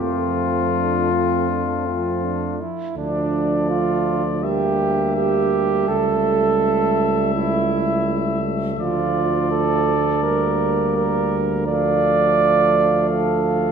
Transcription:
Already playing: F2 F3 F4
0.00 A3 C4
0.74 D4
1.11 C4
1.49 D4
1.86 C4
2.25 D4
2.61 E4
2.96 D2 F3 A3 D4 D5
3.70 F4
4.42 G3 A#3 G4 E5
5.17 G4
5.88 C#2 A3 A4
7.34 E4
8.77 D2 F3 F4 D5
9.51 A4
10.22 G3 A#3 A#4
10.97 A#4
11.66 F3 A3 D5 F5
13.10 A4

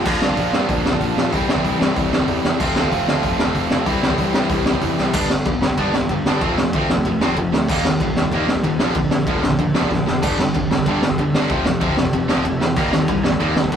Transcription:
0.05 A#1 A#2 F3 A#3 D4 F4, kick, crash
0.21 G2, snare
0.29 kick
0.37 A#1, kick, open hi-hat
0.53 G2, snare
0.69 A#1, kick, open hi-hat
0.85 A#1, snare
0.93 kick
1.01 A#1, kick, open hi-hat
1.16 A#1, snare
1.33 C2 C3 E3 G3 C4 E4, kick, open hi-hat
1.48 C2, snare
1.56 kick
1.64 C2, kick, open hi-hat
1.80 G2, snare
1.96 C2, kick, open hi-hat
2.13 snare
2.20 kick
2.28 E2, kick, open hi-hat
2.44 E2, snare
2.59 F1 F3 A3 C4 F4, kick, crash
2.76 D2, snare
2.84 kick
2.92 F1, kick, open hi-hat
3.08 D2, snare
3.23 F1, kick, open hi-hat
3.39 F1, snare
3.47 kick
3.55 F1, kick, open hi-hat
3.70 F1, snare
3.86 C2 C3 E3 G3 C4 E4, kick, open hi-hat
4.03 C2, snare
4.10 kick
4.18 C2, kick, open hi-hat
4.34 G2, snare
4.49 C2, kick, open hi-hat
4.65 snare
4.74 kick
4.81 E2, kick, open hi-hat
4.98 C2, snare
5.13 G1 G3 B3 D4, kick, crash
5.30 G1 G3 B3, snare
5.45 F1 G3 B3, kick, ride
5.61 G1 G3 B3, snare
5.70 kick
5.77 G1 G3 B3 D4, kick, ride
5.93 G1 G3 B3, snare
6.01 kick
6.09 G1 G3 B3, kick, ride
6.25 G1 G3 B3 D4, snare
6.41 F1 F3 A3 C4, kick, ride
6.57 F1 F3 A3, snare
6.73 D2 F3 A3 C4, kick, ride
6.89 F1 F3 A3, snare
6.97 kick
7.05 F1 F3 A3, kick, ride
7.21 F1 F3 A3 C4, snare
7.29 kick
7.37 F1 F3 A3, kick, ride
7.52 D2 F3 A3, snare
7.69 D#2 D#3 G3 A#3, kick, crash
7.84 D#2 D#3 G3, snare
8.00 C2 D#3 G3, kick, ride
8.15 D#2 D#3 G3, snare
8.24 kick
8.32 D#2 D#3 G3 A#3, kick, ride
8.47 D#2 D#3 G3, snare
8.55 kick
8.63 D#2 D#3 G3, kick, ride
8.78 A#1 A#2 D3 F3, snare
8.95 A#1 A#2 D3, kick, ride
9.10 A#1 A#2 D3, snare
9.27 G1 A#2 D3 F3, kick, ride
9.43 A#1 A#2 D3, snare
9.51 kick
9.59 A#1 A#2 D3, kick, ride
9.74 A#1 A#2 D3 F3, snare
9.83 kick
9.90 A#1 A#2 D3, kick, snare
10.06 F1 A#2 D3, snare
10.22 G1 G2 D3 G3, kick, crash, ride
10.39 G1 G2 D3, snare
10.54 F1 G2 D3, kick, ride
10.71 G1 G2 D3, snare
10.78 kick
10.86 G1 G2 D3 G3, kick, ride
11.02 G1 G2 D3, snare
11.10 kick
11.18 G1 G2 D3, kick, ride
11.34 G1 G2 D3 G3, snare
11.49 F1 F2 C3 F3, kick, ride
11.65 F1 F2 C3, snare
11.81 D2 F2 C3 F3, kick, ride
11.97 F1 F2 C3, snare
12.05 kick
12.13 F1 F2 C3, kick, ride
12.29 F1 F2 C3 F3, snare
12.37 kick
12.44 F1 F2 C3, kick, ride
12.61 E2 F2 C3, snare
12.76 D#2 D#3 G3 A#3, kick, crash
12.92 D#2 D#3 G3, snare
13.08 C2 D#3 G3, kick, ride
13.24 D#2 D#3 G3, snare
13.32 kick
13.40 D#2 D#3 G3 A#3, kick, ride
13.56 D#2 D#3 G3, snare
13.64 kick
13.72 D#2, kick, ride

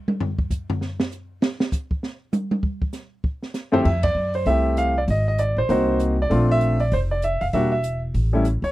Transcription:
0.08 high tom
0.20 floor tom
0.39 kick
0.50 kick, hi-hat pedal
0.70 floor tom
0.81 snare
1.00 snare
1.12 hi-hat pedal
1.42 snare
1.60 snare
1.72 kick, hi-hat pedal
1.91 kick
2.03 snare
2.33 hi-hat pedal, high tom
2.51 high tom
2.63 kick
2.82 kick
2.93 snare, hi-hat pedal
3.24 kick
3.43 snare
3.54 snare, hi-hat pedal
3.72 F2 A3 C4 E4 G4 C5, floor tom
3.85 F2 E5, kick, crash
4.03 D5, kick, ride
4.15 F#2
4.34 C5, open hi-hat
4.46 C2 A3 C4 E4 G4 E5, kick, open hi-hat
4.77 F5, closed hi-hat
4.98 D5
5.08 G#1 D#5, kick, open hi-hat
5.28 D#5
5.38 D5, closed hi-hat
5.57 A1 C5
5.69 C2 A#3 C4 D#4 F#4 C5, kick, open hi-hat
6.00 closed hi-hat
6.22 D5
6.30 A#1 A3 C4 D4 F4, kick, open hi-hat
6.51 E5
6.61 closed hi-hat
6.80 D5, open hi-hat
6.92 F1 C5, kick, open hi-hat
7.11 D5
7.22 E5, closed hi-hat
7.41 F1 F5, open hi-hat
7.53 E1 G3 A#3 D4 F#4 E5, kick, open hi-hat
7.72 E5
7.84 closed hi-hat
8.14 A1, kick, open hi-hat
8.33 G3 A3 C#4 E4
8.45 closed hi-hat
8.62 C#2 C#5, open hi-hat

